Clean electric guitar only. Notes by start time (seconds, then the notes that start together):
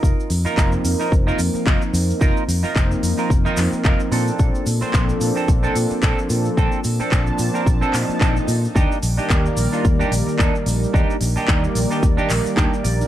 Already playing: D#4 F4 A#4
0.45 D#4 F4 A#4
1.00 D#4 F4 A#4
1.27 D#4 F4 A#4
1.54 muted clean electric guitar stroke
1.66 D#4 F4 A#4
1.94 muted clean electric guitar stroke
2.21 D#4 F4 A#4
2.63 D#4 F4 A#4
3.18 D#4 F4 A#4
3.45 D#4 F4 A#4
3.73 muted clean electric guitar stroke
3.85 D#4 F4 A#4
4.12 C4 D4 A4
4.81 C4 D4 C5
5.36 C4 D4 A4
5.63 C4 D4 A4
5.91 muted clean electric guitar stroke
6.03 C4 D4 A4
6.30 muted clean electric guitar stroke
6.57 C4 D4 A4
7.00 C4 D4 A4
7.54 C4 D4 A#4
7.81 C4 D4 A4
8.08 muted clean electric guitar stroke
8.20 C4 D4 A4
8.48 muted clean electric guitar stroke
8.75 D4 D#4 G4
9.17 D4 D#4 G4
9.72 D4 D#4 F4
9.99 D4 D#4 G4
10.27 muted clean electric guitar stroke
10.39 D4 D#4 A4
10.66 muted clean electric guitar stroke
10.93 D4 D#4 G4
11.36 D4 D#4 G4
11.90 D4 D#4 G4
12.17 D4 D#4 G4
12.45 muted clean electric guitar stroke
12.56 D4 D#4 G4 G5
12.83 D5, muted clean electric guitar stroke